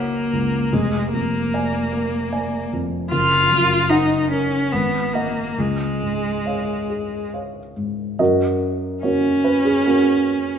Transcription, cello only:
0.00 0.75 A#3 soft
0.73 1.13 G#3 soft
1.14 2.69 A#3 soft
3.12 3.91 F4 medium
3.89 4.30 D#4 medium
4.31 4.74 C#4 medium
4.72 5.15 B3 medium
5.13 5.60 A#3 soft
5.59 7.33 G#3 soft
9.03 10.59 C#4 medium

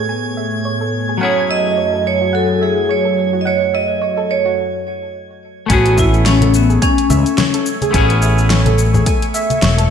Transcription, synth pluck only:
0.09 0.23 G#5 medium
0.37 0.52 E5 medium
0.65 0.80 C#5 medium
0.81 0.92 A4 medium
1.09 1.16 G#4 medium
1.21 1.36 F#5 medium
1.49 1.64 E5 medium
1.77 1.92 C#5 medium
1.93 2.04 A4 medium
2.21 2.28 F#4 medium
2.33 2.48 F#5 medium
2.61 2.77 E5 medium
2.89 3.05 C#5 medium
3.05 3.16 A4 medium
3.33 3.40 F#4 medium
3.45 3.60 F#5 loud
3.74 3.89 E5 medium
4.02 4.17 C#5 medium
4.17 4.28 A4 medium
4.46 4.52 F#4 medium
5.70 5.84 G#5 loud
5.98 6.13 E5 medium
6.26 6.41 C#5 medium
6.42 6.53 A4 medium
6.70 6.76 G#4 medium
6.82 6.96 G#5 loud
7.10 7.25 E5 medium
7.38 7.53 C#5 medium
7.54 7.65 A4 medium
7.82 7.89 G#4 medium
7.94 8.08 G#5 loud
8.22 8.37 E5 medium
8.50 8.65 C#5 medium
8.66 8.77 A4 medium
8.94 9.01 G#4 medium
9.06 9.21 G#5 medium
9.34 9.49 E5 medium
9.62 9.77 C#5 medium
9.78 9.89 A4 medium

